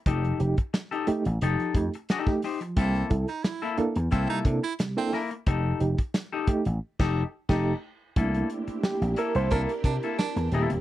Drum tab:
CC |----------------|----------------|---------x--x---|----------------|
HH |xxxxxxxxxxxxx-ox|xxxxx-xxxxxxxxox|x-xxx-xx--------|xxxx-xxxxxxx-xxx|
SD |----o-------ooo-|----o-------ooo-|----o----o--o---|----o-------o---|
BD |o--o------o--o--|o-o-----o-o-----|o--o--o--o--o---|o-------o-o-----|